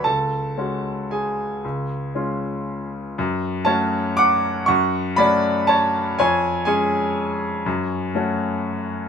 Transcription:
<<
  \new Staff \with { instrumentName = "Grand piano" } { \time 3/4 \key fis \minor \tempo 4 = 119 <a' a''>2 <gis' gis''>4~ | <gis' gis''>2 r4 | r4 <cis'' a''>4 <fis'' d'''>4 | <fis'' cis'''>4 <d'' b''>4 <cis'' a''>4 |
<cis'' gis''>4 <cis'' gis''>2~ | <cis'' gis''>2~ <cis'' gis''>8 r8 | }
  \new Staff \with { instrumentName = "Grand piano" } { \time 3/4 \key fis \minor cis,4 <gis cis' fis'>2 | cis,4 <gis cis' eis'>2 | fis,4 <a cis' fis'>2 | fis,4 <a cis' fis'>2 |
eis,4 <gis cis' gis'>2 | fis,4 <a cis' fis'>2 | }
>>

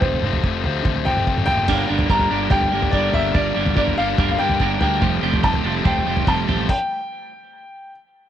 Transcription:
<<
  \new Staff \with { instrumentName = "Upright piano" } { \time 4/4 \key g \minor \tempo 4 = 144 c''2~ c''8 g''4 g''8~ | g''8 r8 bes''4 g''4 d''8 e''8 | d''4 d''8 f''8~ \tuplet 3/2 { f''8 f''16 g''8.~ } g''8 g''8~ | g''8 r8 a''4 g''4 a''4 |
g''2. r4 | }
  \new Staff \with { instrumentName = "Clean electric guitar" } { \time 4/4 \key g \minor r1 | <g d' g' bes'>8 <g d' g' bes'>8 <g d' g' bes'>8 <g d' g' bes'>8 <g d' g' bes'>8 <g d' g' bes'>8 <g d' g' bes'>8 <g d' g' bes'>8 | <g d' g' bes'>8 <g d' g' bes'>8 <g d' g' bes'>8 <g d' g' bes'>8 <g d' g' bes'>8 <g d' g' bes'>8 <g d' g' bes'>8 <g d' g' bes'>8 | <f g a g' c''>8 <f g a g' c''>8 <f g a g' c''>8 <f g a g' c''>8 <f g a g' c''>8 <f g a g' c''>8 <f g a g' c''>8 <f g a g' c''>8 |
r1 | }
  \new Staff \with { instrumentName = "Distorted electric guitar" } { \clef bass \time 4/4 \key g \minor <f, c f a c'>8 <f, c f a c'>8 <f, c f a c'>8 <f, c f a c'>8 <f, c f a c'>8 <f, c f a c'>8 <f, c f a c'>8 <f, c f a c'>8 | <g, d g bes d'>8 <g, d g bes d'>8 <g, d g bes d'>8 <g, d g bes d'>8 <g, d g bes d'>8 <g, d g bes d'>8 <g, d g bes d'>8 <g, d g bes d'>8 | <g, d g bes d'>8 <g, d g bes d'>8 <g, d g bes d'>8 <g, d g bes d'>8 <g, d g bes d'>8 <g, d g bes d'>8 <g, d g bes d'>8 <g, d g bes d'>8 | <f, c f a c'>8 <f, c f a c'>8 <f, c f a c'>8 <f, c f a c'>8 <f, c f a c'>8 <f, c f a c'>8 <f, c f a c'>8 <f, c f a c'>8 |
r1 | }
  \new Staff \with { instrumentName = "Fingered electric bass" } { \clef bass \time 4/4 \key g \minor f,,8 f,,8 f,,8 d,8 d,8 f,,8 f,,8 fis,,8 | g,,8 g,,8 g,,8 g,,8 g,,8 g,,8 g,,8 g,,8 | g,,8 g,,8 g,,8 g,,8 g,,8 g,8 g,,8 d,8 | f,,8 f,,8 f,,8 f,,8 f,,8 f,,8 f,,8 a,,8 |
r1 | }
  \new DrumStaff \with { instrumentName = "Drums" } \drummode { \time 4/4 <bd tomfh>16 tomfh16 toml16 tomfh16 bd8 tomfh8 <bd tomfh>16 tomfh16 tomfh16 toml16 bd16 toml16 tomfh16 toml16 | <cymc bd tomfh>8. tomfh16 bd16 tomfh8. <bd tomfh>16 tomfh8 tomfh16 bd8 tomfh8 | <bd tomfh>8. tomfh16 bd16 tomfh8. <bd tomfh>16 tomfh8 tomfh16 bd8 tomfh8 | <bd tomfh>8. tomfh16 bd16 tomfh8. <bd tomfh>16 tomfh8 tomfh16 bd8 tomfh8 |
<cymc bd>4 r4 r4 r4 | }
>>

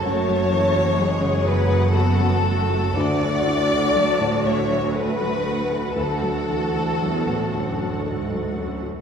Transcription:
<<
  \new Staff \with { instrumentName = "Violin section" } { \time 3/4 \key d \lydian \tempo 4 = 60 a''4 fis''2 | fis''4 a''8 e''8 fis''4 | fis''2. | }
  \new Staff \with { instrumentName = "Violin section" } { \time 3/4 \key d \lydian cis''4. b'8 a'4 | d''4. cis''8 b'4 | a'2 r4 | }
  \new Staff \with { instrumentName = "Viola section" } { \time 3/4 \key d \lydian << { fis'4 gis'4 fis'4 | fis'2. | fis'2. | } \\ { a8 a8 gis8 fis8 b8 a8~ | a2. | a'2. | } >> }
  \new Staff \with { instrumentName = "Felt piano" } { \clef bass \time 3/4 \key d \lydian <fis, fis'>16 fis16 e16 fis'16 fis16 cis16 fis'16 fis16 a'16 fis16 a'16 fis'16 | d,16 fis'16 e'16 fis'16 fis16 a,16 fis'16 fis16 a'16 fis16 a'16 fis'16 | d,16 fis16 e16 r16 fis16 a,16 fis'16 fis16 a'16 fis16 a'16 fis'16 | }
  \new Staff \with { instrumentName = "Cello section" } { \clef bass \time 3/4 \key d \lydian fis,2. | d,2. | d,4 e,8 fis,8 gis,8 fis,8 | }
  \new Staff \with { instrumentName = "Double bass section" } { \clef bass \time 3/4 \key d \lydian fis,,2. | d,2. | d,2. | }
>>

